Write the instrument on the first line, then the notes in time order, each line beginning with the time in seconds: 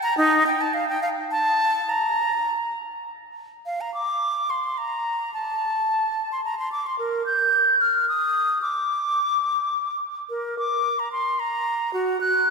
flute
0.03 A#5
0.17 D#4
0.47 G5
0.61 A5
0.74 F5
0.89 G5
1.02 F5
1.31 A5
1.89 A#5
3.66 F5
3.81 A#5
3.94 D6
4.50 C6
4.78 A#5
5.34 A5
6.32 C6
6.45 A#5
6.59 C6
6.72 D6
6.87 C6
6.99 A#4
7.26 G6
7.81 F6
8.09 D#6
8.62 D6
10.30 A#4
10.59 D6
10.99 A#5
11.12 C6
11.40 A#5
11.93 F#4
12.21 F#6